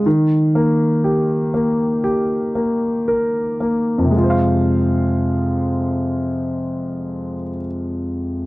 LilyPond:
\new Staff \with { instrumentName = "Grand piano" } { \time 4/4 \key f \minor \tempo 4 = 55 ees8 bes8 g'8 bes8 g'8 bes8 bes'8 bes8 | <f, c aes f' c'' f''>1 | }